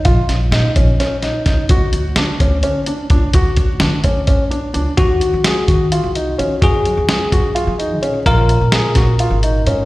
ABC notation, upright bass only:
X:1
M:7/8
L:1/16
Q:1/4=128
K:Ebdor
V:1 name="Upright bass" clef=bass
B,,, z B,,,2 B,, z B,,,2 z4 C,, z | =D,, z D,,2 =D, z D,,2 z4 _D,, z | =D,, z D,,2 =D, z D,,2 z4 _D,, z | E,,3 E,2 z E,3 C,,3 E, z |
G,,2 z E,,2 z G,,2 z G,3 B,, z | B,,,3 B,,2 z B,,3 A,,,3 A,, z |]